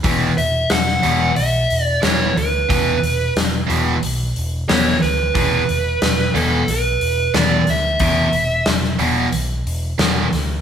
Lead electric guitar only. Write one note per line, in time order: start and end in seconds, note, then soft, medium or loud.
0.38 0.71 E5 medium
0.72 1.36 F#5 loud
1.36 1.83 E5 medium
1.83 1.99 D5 medium
2.04 2.37 C#5 medium
2.38 3.33 B4 medium
4.69 5.00 C#5 medium
5.02 6.39 B4 medium
6.35 6.69 A4 medium
6.71 7.35 B4 medium
7.36 7.69 D5 medium
7.70 8.64 E5 medium